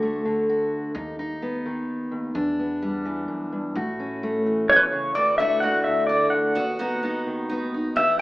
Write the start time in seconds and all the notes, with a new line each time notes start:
Already playing: D2 D3 F#4
0.02 A3
0.25 D3
0.49 F#4
0.95 D#2 D#4
1.19 D#4
1.42 B3
1.66 D#3
2.11 D#2
2.35 E2 D4
2.59 B3
2.82 G3
3.05 E3
3.28 F#2
3.52 G2
3.75 A1 A2 F#4
4.00 C#4
4.23 A3
4.46 E3
4.69 B2 C#5
4.76 B4
4.83 C#5
4.92 C#3
5.15 D2 E3 F#4 D5
5.38 A3 D4 F#4 E5
5.60 A3 F#4 F#5
5.84 D3 E5
6.07 D4 D5
6.30 D2 F#5
6.55 D#2 B3 F#4
6.79 B3 D#4 F#4
7.03 B3 D#4
7.27 D#3
7.49 B3 D#4
7.74 D#4
7.96 E2 B3 G4 E5